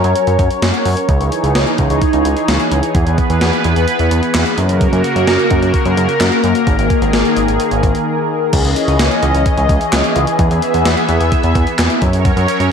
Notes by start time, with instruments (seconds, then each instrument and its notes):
Already playing: analog synth pad F#3 C#4 A#4 C#5
0.04 analog synth bass F#2, closed hi-hat
0.16 closed hi-hat
0.27 analog synth bass F#2, closed hi-hat
0.39 analog synth bass F#2, kick, closed hi-hat
0.51 closed hi-hat
0.62 analog synth bass F#2, snare, closed hi-hat
0.74 closed hi-hat
0.85 analog synth bass F#2, open hi-hat
0.97 closed hi-hat
1.09 analog synth bass C#2, analog synth pad E3 D#4 G#4, kick, closed hi-hat
1.20 analog synth bass C#2, closed hi-hat
1.32 closed hi-hat
1.44 analog synth bass C#2, closed hi-hat
1.55 analog synth bass C#2, snare, closed hi-hat
1.67 closed hi-hat
1.78 analog synth bass C#2, kick, closed hi-hat
1.90 analog synth bass C#2, closed hi-hat
2.02 kick, closed hi-hat
2.13 analog synth bass C#2, closed hi-hat
2.25 analog synth bass C#2, closed hi-hat
2.37 closed hi-hat
2.48 analog synth bass C#2, snare, closed hi-hat
2.60 closed hi-hat
2.72 analog synth bass C#2, closed hi-hat
2.83 closed hi-hat
2.95 analog synth bass E2, analog synth pad B3 B4, kick, closed hi-hat
3.06 analog synth bass E2, closed hi-hat
3.18 kick, closed hi-hat
3.30 analog synth bass E2, closed hi-hat
3.41 analog synth bass E2, snare, closed hi-hat
3.53 closed hi-hat
3.64 analog synth bass E2, closed hi-hat
3.76 analog synth bass E2, closed hi-hat
3.88 closed hi-hat
3.99 analog synth bass E2, closed hi-hat
4.11 analog synth bass E2, closed hi-hat
4.23 closed hi-hat
4.34 analog synth bass E2, snare, clap, closed hi-hat
4.46 closed hi-hat
4.58 analog synth bass F#2, analog synth pad C#3 A#3 F#4 A#4, closed hi-hat
4.69 closed hi-hat
4.81 kick, closed hi-hat
4.93 analog synth bass F#2, closed hi-hat
5.04 closed hi-hat
5.16 analog synth bass F#2, closed hi-hat
5.27 analog synth bass F#2, snare, closed hi-hat
5.39 closed hi-hat
5.51 analog synth bass F#2, kick, closed hi-hat
5.62 analog synth bass F#2, closed hi-hat
5.74 kick, closed hi-hat
5.85 analog synth bass F#2, closed hi-hat
5.97 analog synth bass F#2, closed hi-hat
6.09 closed hi-hat
6.20 analog synth bass F#2, snare, clap, closed hi-hat
6.32 closed hi-hat
6.44 analog synth bass F#2, closed hi-hat
6.55 closed hi-hat
6.67 analog synth bass G#1, analog synth pad D#3 G#4, kick, closed hi-hat
6.79 analog synth bass G#1, closed hi-hat
6.90 kick, closed hi-hat
7.02 analog synth bass G#1, closed hi-hat
7.13 analog synth bass G#1, snare, closed hi-hat
7.25 closed hi-hat
7.37 analog synth bass G#1, closed hi-hat
7.48 analog synth bass G#1, closed hi-hat
7.60 closed hi-hat
7.71 analog synth bass G#1, closed hi-hat
7.83 analog synth bass G#1, kick, closed hi-hat
7.95 closed hi-hat
8.53 analog synth bass C#2, analog synth pad E3 C#4 G#4 D#5, kick, closed hi-hat, crash
8.65 analog synth bass C#2, closed hi-hat
8.76 closed hi-hat
8.88 analog synth bass C#2, closed hi-hat
8.99 analog synth bass C#2, snare, closed hi-hat
9.11 closed hi-hat
9.23 analog synth bass C#2, closed hi-hat
9.34 analog synth bass C#2, closed hi-hat
9.46 kick, closed hi-hat
9.57 analog synth bass C#2, closed hi-hat
9.69 analog synth bass C#2, kick, closed hi-hat
9.81 closed hi-hat
9.93 analog synth bass C#2, snare, clap, closed hi-hat
10.04 closed hi-hat
10.16 analog synth bass C#2, closed hi-hat
10.27 closed hi-hat
10.39 analog synth bass E2, analog synth pad B3 E5, kick, closed hi-hat
10.51 analog synth bass E2, closed hi-hat
10.62 closed hi-hat
10.74 analog synth bass E2, closed hi-hat
10.85 analog synth bass E2, snare, closed hi-hat
10.97 closed hi-hat
11.09 analog synth bass E2, closed hi-hat
11.21 analog synth bass E2, closed hi-hat
11.32 kick, closed hi-hat
11.43 analog synth bass E2, closed hi-hat
11.55 analog synth bass E2, kick, closed hi-hat
11.67 closed hi-hat
11.79 analog synth bass E2, snare, clap, closed hi-hat
11.90 closed hi-hat
12.02 analog synth bass F#2, analog synth pad F#3 C#4 A#4 C#5, kick, closed hi-hat
12.13 closed hi-hat
12.25 kick, closed hi-hat
12.37 analog synth bass F#2, closed hi-hat
12.48 closed hi-hat
12.60 analog synth bass F#2, closed hi-hat